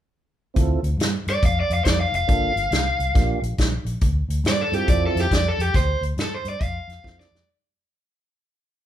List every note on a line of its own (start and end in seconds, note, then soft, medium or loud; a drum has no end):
0.54 0.74 D2 medium
0.54 0.80 C4 medium
0.54 0.80 E4 medium
0.54 0.80 F4 medium
0.54 0.81 A4 medium
0.54 kick medium
0.54 closed hi-hat medium
0.83 0.93 D2 medium
0.83 closed hi-hat medium
0.97 1.16 G2 medium
0.97 snare loud
0.97 closed hi-hat medium
1.27 1.37 G2 medium
1.27 1.43 D5 medium
1.27 closed hi-hat medium
1.43 1.61 F2 medium
1.43 1.58 F5 medium
1.43 kick loud
1.43 closed hi-hat medium
1.60 1.72 D5 medium
1.70 1.80 F2 medium
1.70 1.84 F5 medium
1.70 closed hi-hat medium
1.85 2.04 F2 medium
1.85 1.99 D5 medium
1.85 kick medium
1.85 snare loud
1.85 closed hi-hat medium
2.01 2.14 F5 medium
2.12 2.22 F1 medium
2.12 3.40 F5 medium
2.12 closed hi-hat medium
2.27 2.47 G1 medium
2.27 2.53 A#3 medium
2.27 2.53 D4 medium
2.27 2.53 F4 soft
2.27 2.54 A4 medium
2.27 kick loud
2.27 closed hi-hat medium
2.56 2.66 G1 medium
2.56 closed hi-hat medium
2.71 2.89 C2 medium
2.71 snare loud
2.71 closed hi-hat medium
2.99 3.09 C2 medium
2.99 closed hi-hat medium
3.15 3.34 A#1 loud
3.15 3.40 A#3 medium
3.15 3.40 D4 medium
3.15 3.40 F4 medium
3.15 3.40 G4 medium
3.15 kick loud
3.15 snare soft
3.15 closed hi-hat medium
3.42 3.52 A#1 medium
3.42 closed hi-hat medium
3.58 3.77 A#1 medium
3.58 kick medium
3.58 snare medium
3.58 closed hi-hat medium
3.85 3.95 A#1 medium
3.85 closed hi-hat medium
4.01 4.20 D2 medium
4.01 kick loud
4.01 closed hi-hat medium
4.29 4.39 D2 medium
4.29 closed hi-hat medium
4.44 4.62 G2 medium
4.44 snare loud
4.44 closed hi-hat medium
4.48 4.60 D5 loud
4.61 4.74 A4 medium
4.72 4.82 G2 medium
4.72 5.27 C4 medium
4.72 5.27 E4 medium
4.72 5.28 F4 medium
4.72 4.87 G4 medium
4.72 5.28 A4 medium
4.72 closed hi-hat medium
4.88 5.06 F2 medium
4.88 5.02 D5 medium
4.88 kick loud
4.88 closed hi-hat medium
5.06 5.18 A4 medium
5.15 5.25 F2 medium
5.15 snare soft
5.15 closed hi-hat medium
5.21 5.32 G4 medium
5.31 5.49 F2 medium
5.31 5.46 D5 medium
5.31 kick medium
5.31 snare loud
5.31 closed hi-hat medium
5.48 5.61 A4 medium
5.58 5.68 F2 medium
5.58 5.74 G4 medium
5.58 closed hi-hat medium
5.74 5.92 D2 medium
5.74 6.02 C5 loud
5.74 kick loud
5.74 snare soft
5.74 closed hi-hat medium
6.01 6.11 D2 medium
6.01 closed hi-hat medium
6.17 6.35 G2 medium
6.17 snare loud
6.17 closed hi-hat medium
6.21 6.33 A4 medium
6.35 6.47 C5 medium
6.45 6.55 G2 medium
6.45 closed hi-hat medium
6.49 6.63 D5 medium
6.60 6.79 F2 medium
6.60 7.17 F5 medium
6.60 kick loud
6.60 closed hi-hat medium
6.88 6.98 F2 medium
6.88 snare soft
6.88 closed hi-hat medium
7.03 7.22 F2 medium
7.03 7.28 C4 medium
7.03 7.29 E4 soft
7.03 7.29 F4 soft
7.03 7.29 A4 medium
7.03 kick medium
7.03 snare medium
7.20 7.47 D5 medium
7.20 snare medium
7.32 7.41 F2 medium
7.32 snare medium